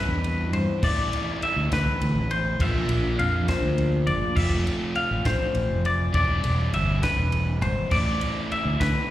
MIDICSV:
0, 0, Header, 1, 5, 480
1, 0, Start_track
1, 0, Key_signature, 0, "minor"
1, 0, Tempo, 591133
1, 673, Time_signature, 6, 3, 24, 8
1, 7393, End_track
2, 0, Start_track
2, 0, Title_t, "Clean electric guitar"
2, 0, Program_c, 0, 27
2, 0, Note_on_c, 0, 71, 93
2, 430, Note_off_c, 0, 71, 0
2, 433, Note_on_c, 0, 72, 76
2, 673, Note_off_c, 0, 72, 0
2, 682, Note_on_c, 0, 74, 96
2, 1158, Note_off_c, 0, 74, 0
2, 1163, Note_on_c, 0, 76, 90
2, 1398, Note_off_c, 0, 76, 0
2, 1406, Note_on_c, 0, 71, 102
2, 1875, Note_on_c, 0, 72, 72
2, 1880, Note_off_c, 0, 71, 0
2, 2120, Note_off_c, 0, 72, 0
2, 2120, Note_on_c, 0, 76, 95
2, 2587, Note_off_c, 0, 76, 0
2, 2591, Note_on_c, 0, 77, 84
2, 2831, Note_on_c, 0, 72, 90
2, 2832, Note_off_c, 0, 77, 0
2, 3302, Note_on_c, 0, 74, 74
2, 3312, Note_off_c, 0, 72, 0
2, 3540, Note_off_c, 0, 74, 0
2, 3540, Note_on_c, 0, 76, 104
2, 4023, Note_off_c, 0, 76, 0
2, 4026, Note_on_c, 0, 77, 82
2, 4269, Note_off_c, 0, 77, 0
2, 4271, Note_on_c, 0, 72, 91
2, 4751, Note_off_c, 0, 72, 0
2, 4758, Note_on_c, 0, 74, 75
2, 4984, Note_off_c, 0, 74, 0
2, 4994, Note_on_c, 0, 74, 95
2, 5470, Note_off_c, 0, 74, 0
2, 5473, Note_on_c, 0, 76, 85
2, 5710, Note_on_c, 0, 71, 99
2, 5712, Note_off_c, 0, 76, 0
2, 6185, Note_off_c, 0, 71, 0
2, 6188, Note_on_c, 0, 72, 85
2, 6429, Note_off_c, 0, 72, 0
2, 6429, Note_on_c, 0, 74, 93
2, 6909, Note_off_c, 0, 74, 0
2, 6918, Note_on_c, 0, 76, 86
2, 7147, Note_on_c, 0, 71, 94
2, 7154, Note_off_c, 0, 76, 0
2, 7393, Note_off_c, 0, 71, 0
2, 7393, End_track
3, 0, Start_track
3, 0, Title_t, "Overdriven electric guitar"
3, 0, Program_c, 1, 29
3, 0, Note_on_c, 1, 52, 88
3, 0, Note_on_c, 1, 55, 98
3, 0, Note_on_c, 1, 60, 110
3, 0, Note_on_c, 1, 64, 100
3, 662, Note_off_c, 1, 55, 0
3, 671, Note_on_c, 1, 45, 89
3, 675, Note_off_c, 1, 52, 0
3, 678, Note_on_c, 1, 52, 91
3, 687, Note_on_c, 1, 57, 99
3, 689, Note_off_c, 1, 60, 0
3, 690, Note_off_c, 1, 64, 0
3, 692, Note_on_c, 1, 60, 96
3, 693, Note_on_c, 1, 64, 107
3, 2099, Note_off_c, 1, 45, 0
3, 2114, Note_off_c, 1, 52, 0
3, 2115, Note_on_c, 1, 46, 94
3, 2118, Note_on_c, 1, 53, 98
3, 2123, Note_off_c, 1, 57, 0
3, 2126, Note_on_c, 1, 58, 104
3, 2131, Note_off_c, 1, 60, 0
3, 2134, Note_on_c, 1, 62, 90
3, 2135, Note_off_c, 1, 64, 0
3, 2138, Note_on_c, 1, 65, 99
3, 3527, Note_off_c, 1, 53, 0
3, 3537, Note_on_c, 1, 53, 83
3, 3540, Note_off_c, 1, 46, 0
3, 3545, Note_off_c, 1, 58, 0
3, 3549, Note_off_c, 1, 62, 0
3, 3550, Note_on_c, 1, 57, 95
3, 3551, Note_off_c, 1, 65, 0
3, 3553, Note_on_c, 1, 60, 102
3, 3563, Note_on_c, 1, 65, 97
3, 4969, Note_off_c, 1, 53, 0
3, 4975, Note_on_c, 1, 52, 109
3, 4976, Note_off_c, 1, 57, 0
3, 4982, Note_off_c, 1, 65, 0
3, 4992, Note_on_c, 1, 55, 105
3, 4994, Note_off_c, 1, 60, 0
3, 4998, Note_on_c, 1, 60, 97
3, 5006, Note_on_c, 1, 64, 106
3, 6407, Note_off_c, 1, 52, 0
3, 6419, Note_off_c, 1, 60, 0
3, 6423, Note_off_c, 1, 64, 0
3, 6425, Note_on_c, 1, 45, 95
3, 6426, Note_on_c, 1, 52, 98
3, 6432, Note_off_c, 1, 55, 0
3, 6435, Note_on_c, 1, 57, 90
3, 6442, Note_on_c, 1, 60, 112
3, 6447, Note_on_c, 1, 64, 107
3, 7393, Note_off_c, 1, 45, 0
3, 7393, Note_off_c, 1, 52, 0
3, 7393, Note_off_c, 1, 57, 0
3, 7393, Note_off_c, 1, 60, 0
3, 7393, Note_off_c, 1, 64, 0
3, 7393, End_track
4, 0, Start_track
4, 0, Title_t, "Fingered electric bass"
4, 0, Program_c, 2, 33
4, 61, Note_on_c, 2, 40, 76
4, 424, Note_off_c, 2, 40, 0
4, 424, Note_on_c, 2, 43, 81
4, 534, Note_off_c, 2, 43, 0
4, 672, Note_on_c, 2, 33, 115
4, 885, Note_off_c, 2, 33, 0
4, 1270, Note_on_c, 2, 38, 97
4, 1378, Note_off_c, 2, 38, 0
4, 1398, Note_on_c, 2, 38, 103
4, 1502, Note_off_c, 2, 38, 0
4, 1635, Note_on_c, 2, 38, 84
4, 1741, Note_off_c, 2, 38, 0
4, 1748, Note_on_c, 2, 33, 100
4, 2070, Note_off_c, 2, 33, 0
4, 2106, Note_on_c, 2, 34, 117
4, 2322, Note_off_c, 2, 34, 0
4, 2348, Note_on_c, 2, 34, 108
4, 2563, Note_off_c, 2, 34, 0
4, 2586, Note_on_c, 2, 41, 90
4, 2802, Note_off_c, 2, 41, 0
4, 2948, Note_on_c, 2, 38, 87
4, 3304, Note_on_c, 2, 31, 82
4, 3317, Note_off_c, 2, 38, 0
4, 3415, Note_off_c, 2, 31, 0
4, 3544, Note_on_c, 2, 29, 92
4, 3761, Note_off_c, 2, 29, 0
4, 4149, Note_on_c, 2, 33, 103
4, 4257, Note_off_c, 2, 33, 0
4, 4265, Note_on_c, 2, 33, 92
4, 4375, Note_off_c, 2, 33, 0
4, 4500, Note_on_c, 2, 33, 89
4, 4612, Note_off_c, 2, 33, 0
4, 4615, Note_on_c, 2, 29, 95
4, 4941, Note_off_c, 2, 29, 0
4, 4985, Note_on_c, 2, 28, 111
4, 5200, Note_off_c, 2, 28, 0
4, 5223, Note_on_c, 2, 28, 97
4, 5439, Note_off_c, 2, 28, 0
4, 5464, Note_on_c, 2, 31, 91
4, 5680, Note_off_c, 2, 31, 0
4, 5823, Note_on_c, 2, 28, 84
4, 6184, Note_off_c, 2, 28, 0
4, 6184, Note_on_c, 2, 32, 88
4, 6293, Note_off_c, 2, 32, 0
4, 6424, Note_on_c, 2, 33, 97
4, 6639, Note_off_c, 2, 33, 0
4, 7027, Note_on_c, 2, 38, 102
4, 7135, Note_off_c, 2, 38, 0
4, 7149, Note_on_c, 2, 38, 114
4, 7256, Note_off_c, 2, 38, 0
4, 7393, End_track
5, 0, Start_track
5, 0, Title_t, "Drums"
5, 197, Note_on_c, 9, 51, 89
5, 278, Note_off_c, 9, 51, 0
5, 432, Note_on_c, 9, 51, 76
5, 514, Note_off_c, 9, 51, 0
5, 671, Note_on_c, 9, 49, 126
5, 674, Note_on_c, 9, 36, 127
5, 752, Note_off_c, 9, 49, 0
5, 755, Note_off_c, 9, 36, 0
5, 917, Note_on_c, 9, 51, 89
5, 999, Note_off_c, 9, 51, 0
5, 1156, Note_on_c, 9, 51, 97
5, 1237, Note_off_c, 9, 51, 0
5, 1394, Note_on_c, 9, 51, 117
5, 1395, Note_on_c, 9, 36, 85
5, 1403, Note_on_c, 9, 38, 107
5, 1476, Note_off_c, 9, 36, 0
5, 1476, Note_off_c, 9, 51, 0
5, 1484, Note_off_c, 9, 38, 0
5, 1636, Note_on_c, 9, 51, 96
5, 1717, Note_off_c, 9, 51, 0
5, 1873, Note_on_c, 9, 51, 87
5, 1954, Note_off_c, 9, 51, 0
5, 2112, Note_on_c, 9, 36, 127
5, 2112, Note_on_c, 9, 51, 127
5, 2193, Note_off_c, 9, 36, 0
5, 2194, Note_off_c, 9, 51, 0
5, 2345, Note_on_c, 9, 51, 90
5, 2426, Note_off_c, 9, 51, 0
5, 2593, Note_on_c, 9, 51, 94
5, 2674, Note_off_c, 9, 51, 0
5, 2828, Note_on_c, 9, 51, 101
5, 2829, Note_on_c, 9, 36, 84
5, 2836, Note_on_c, 9, 38, 105
5, 2909, Note_off_c, 9, 51, 0
5, 2910, Note_off_c, 9, 36, 0
5, 2917, Note_off_c, 9, 38, 0
5, 3068, Note_on_c, 9, 51, 84
5, 3150, Note_off_c, 9, 51, 0
5, 3304, Note_on_c, 9, 51, 71
5, 3385, Note_off_c, 9, 51, 0
5, 3544, Note_on_c, 9, 49, 127
5, 3545, Note_on_c, 9, 36, 114
5, 3625, Note_off_c, 9, 49, 0
5, 3626, Note_off_c, 9, 36, 0
5, 3791, Note_on_c, 9, 51, 75
5, 3872, Note_off_c, 9, 51, 0
5, 4023, Note_on_c, 9, 51, 87
5, 4104, Note_off_c, 9, 51, 0
5, 4265, Note_on_c, 9, 51, 103
5, 4266, Note_on_c, 9, 36, 91
5, 4273, Note_on_c, 9, 38, 125
5, 4346, Note_off_c, 9, 51, 0
5, 4347, Note_off_c, 9, 36, 0
5, 4354, Note_off_c, 9, 38, 0
5, 4503, Note_on_c, 9, 51, 86
5, 4584, Note_off_c, 9, 51, 0
5, 4750, Note_on_c, 9, 51, 74
5, 4831, Note_off_c, 9, 51, 0
5, 4985, Note_on_c, 9, 51, 117
5, 4987, Note_on_c, 9, 36, 125
5, 5066, Note_off_c, 9, 51, 0
5, 5069, Note_off_c, 9, 36, 0
5, 5227, Note_on_c, 9, 51, 88
5, 5308, Note_off_c, 9, 51, 0
5, 5469, Note_on_c, 9, 51, 98
5, 5550, Note_off_c, 9, 51, 0
5, 5707, Note_on_c, 9, 51, 114
5, 5708, Note_on_c, 9, 36, 83
5, 5716, Note_on_c, 9, 38, 105
5, 5789, Note_off_c, 9, 36, 0
5, 5789, Note_off_c, 9, 51, 0
5, 5797, Note_off_c, 9, 38, 0
5, 5945, Note_on_c, 9, 51, 90
5, 6026, Note_off_c, 9, 51, 0
5, 6188, Note_on_c, 9, 51, 74
5, 6269, Note_off_c, 9, 51, 0
5, 6424, Note_on_c, 9, 49, 120
5, 6428, Note_on_c, 9, 36, 127
5, 6505, Note_off_c, 9, 49, 0
5, 6509, Note_off_c, 9, 36, 0
5, 6668, Note_on_c, 9, 51, 87
5, 6749, Note_off_c, 9, 51, 0
5, 6915, Note_on_c, 9, 51, 86
5, 6996, Note_off_c, 9, 51, 0
5, 7150, Note_on_c, 9, 36, 85
5, 7151, Note_on_c, 9, 51, 116
5, 7159, Note_on_c, 9, 38, 121
5, 7232, Note_off_c, 9, 36, 0
5, 7232, Note_off_c, 9, 51, 0
5, 7240, Note_off_c, 9, 38, 0
5, 7393, End_track
0, 0, End_of_file